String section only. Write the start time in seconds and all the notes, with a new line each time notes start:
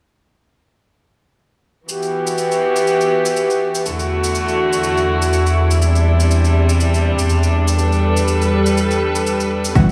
1.88 E3 B3 F#4 G4
3.85 E2 D3 A3 E4 F#4
5.82 C3 G3 D4
7.78 G3 A4 B4
9.75 E3 G3 B3 F#4